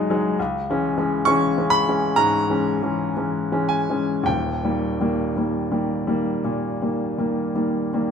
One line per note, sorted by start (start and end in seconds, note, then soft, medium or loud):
0.00 0.41 C2 medium
0.00 0.10 F#3 medium
0.00 0.11 G#3 medium
0.00 0.11 D#4 medium
0.00 0.41 F#5 loud
0.00 0.38 G#5 loud
0.10 0.36 F#3 medium
0.10 0.37 G#3 medium
0.10 0.37 D#4 medium
0.39 0.68 C#2 medium
0.70 0.95 E3 medium
0.70 0.96 G#3 medium
0.70 0.96 C#4 medium
0.98 1.24 E3 medium
0.98 1.24 G#3 medium
0.98 1.25 C#4 medium
1.25 1.54 E3 medium
1.25 1.54 G#3 medium
1.25 1.54 C#4 medium
1.25 1.71 C#6 loud
1.58 1.84 E3 medium
1.58 1.84 G#3 medium
1.58 1.85 C#4 medium
1.70 2.17 B5 loud
1.88 2.15 E3 medium
1.88 2.16 G#3 medium
1.88 2.16 C#4 medium
2.16 2.48 G#2 medium
2.16 3.68 A#5 loud
2.50 2.79 E3 medium
2.50 2.79 G#3 soft
2.50 2.79 C#4 medium
2.82 3.12 E3 medium
2.82 3.13 G#3 soft
2.82 3.13 C#4 medium
3.17 3.48 E3 medium
3.17 3.48 G#3 soft
3.17 3.48 C#4 soft
3.52 3.84 E3 medium
3.52 3.84 G#3 soft
3.52 3.85 C#4 medium
3.69 4.25 G#5 medium
3.89 4.22 E3 soft
3.89 4.23 G#3 soft
3.89 4.23 C#4 medium
4.23 4.62 D#1 medium
4.23 4.61 D#2 medium
4.23 8.11 G5 medium
4.64 4.96 D#3 soft
4.64 4.97 G3 soft
4.64 4.97 A#3 soft
5.00 5.32 D#3 soft
5.00 5.33 G3 medium
5.00 5.33 A#3 medium
5.36 5.68 D#3 soft
5.36 5.69 G3 soft
5.36 5.69 A#3 soft
5.71 6.04 D#3 soft
5.71 6.04 G3 soft
5.71 6.04 A#3 soft
6.07 6.40 D#3 soft
6.07 6.40 G3 medium
6.07 6.41 A#3 medium
6.44 6.80 A#2 medium
6.82 7.15 D#3 soft
6.82 7.15 G3 soft
6.82 7.15 A#3 soft
7.18 7.52 D#3 soft
7.18 7.52 G3 soft
7.18 7.52 A#3 medium
7.55 7.89 D#3 soft
7.55 7.89 G3 soft
7.55 7.89 A#3 soft
7.93 8.11 D#3 medium
7.93 8.11 G3 soft
7.93 8.11 A#3 soft